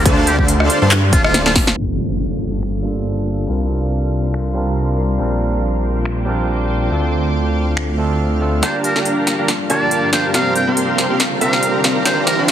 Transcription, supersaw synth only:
0.06 D4 A4 C5 F5 A5
0.39 D4 A4 C5 F5 C6
0.82 D4 A4 C5 F5 C6
1.13 D4 A4 C5 F5 A5
1.46 D4 A4 C5 F5 C6
1.67 D4 A4 C5 F5 A5
8.63 D4 G4 A#4 F5 A5
8.96 D4 G4 A#4 F5 A#5
9.39 D4 G4 A#4 F5 A#5
9.70 D4 G4 A#4 F5 A5
10.13 D4 G4 A#4 F5 A5
10.34 C4 G4 A#4 F5 A#5
10.67 C4 G4 A#4 F5 C6
11.10 C4 G4 A#4 F5 C6
11.41 C4 G4 A#4 F5 A#5
11.84 C4 G4 A#4 F5 A#5
12.05 D4 G4 C5 F5 A#5
12.39 D4 G4 C5 F5 C6

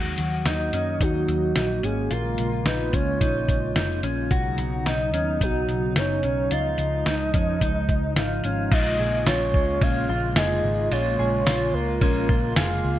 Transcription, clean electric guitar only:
Already playing: F#4
0.46 D#4
0.74 C#4
1.01 D#4
1.56 D#4
1.83 C#4
2.11 F4
2.66 D#4
2.93 C#4
3.21 D#4
3.76 D#4
4.03 C#4
4.31 F#4
4.86 D#4
5.14 C#4
5.42 D#4
5.96 D#4
6.24 C#4
6.52 F4
7.07 D#4
7.34 C#4
7.62 D#4
8.17 D#4
8.45 C#4
8.72 F4
9.00 G#4
9.27 F4
9.82 C#4
10.09 F4
10.37 G#4
10.92 F4
11.19 G#4
11.47 F4
12.02 C#4
12.29 F4
12.57 G#4

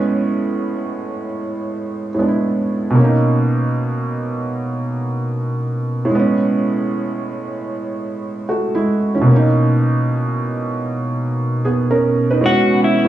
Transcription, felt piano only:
Already playing: A2 G#3 B3 C#4 B4
2.15 A2 G#3
2.19 B3 D4
2.28 E4
2.90 B2
2.95 A#3
2.99 C#4
3.04 D#4
6.05 A2
6.10 G#3
6.15 B3
6.20 C#4
8.49 A3 F#4
8.75 G#3 E4
9.15 E3 C#4
9.21 B2
9.27 A#3
9.31 C#4
9.36 D#4
11.65 B3 G#4
11.91 C#4 A#4
12.30 D#4 B4
12.41 A2 G#3
12.46 B3 C#4
13.05 A2

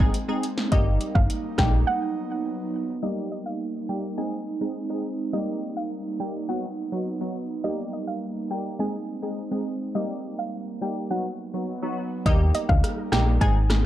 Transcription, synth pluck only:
0.72 D#5
1.15 F5
1.59 G5
1.87 F#5
3.03 D#5
3.32 D#5
3.46 F5
3.89 G5
4.18 G#5
5.33 D#5
5.77 F5
6.20 G5
6.49 F#5
7.64 D#5
7.93 D#5
8.07 F5
8.51 G5
8.80 G#5
9.95 D#5
10.39 F5
10.82 G5
11.11 F#5
12.26 D#5
12.55 D#5
12.69 F5
13.12 G5
13.41 G#5

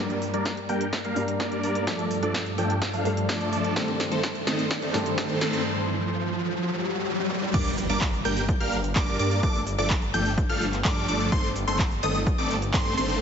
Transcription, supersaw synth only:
0.00 G3 A#3 D4 A#4 D5
0.34 G3 A#3 D4 A#4 D5
0.69 G3 A#3 D4 A#4 G5
1.05 G3 A#3 D4 A#4 F5
1.40 G3 A#3 D4 A#4 D5
1.63 G3 A#3 D4 A#4 D5
1.87 F3
2.23 F3 A3 D4 A4 D5
2.58 F3 A3 D4 A4 G5
2.93 F3 A3 D4 A4 F5
3.29 F3 A3 D4 A4 D5
3.52 F3 A3 D4 A4 D5
3.76 D#3 A3 C4 C5
4.12 D#3 A3 C4 A4 C5
4.47 D#3 A3 C4 A4 D#5
4.82 D#3 A3 C4 A4 D5
5.18 D#3 A3 C4 A4 C5
5.41 D#3 A3 C4 A4 C5
7.54 G3 A#3 D4 A#4 D5
7.90 G3 A#3 D4 A#4 D5
8.25 G3 A#3 D4 A#4 G5
8.60 G3 A#3 D4 A#4 F5
8.96 G3 A#3 D4 A#4 D5
9.19 G3 A#3 D4 A#4 D5
9.43 F3 A3 D4 A4 D5
9.78 F3 A3 D4 A4 D5
10.14 F3 A3 D4 A4 G5
10.49 F3 A3 D4 A4 F5
10.85 F3 A3 D4 A4 D5
11.09 F3 A3 D4 A4 D5
11.32 D#3 A3 C4 A4
11.68 D#3 A3 C4 A4 C5
12.03 D#3 A3 C4 A4 D#5
12.38 D#3 A3 C4 A4 D5
12.74 D#3 A3 C4 A4 C5
12.98 D#3 A3 C4 A4 C5

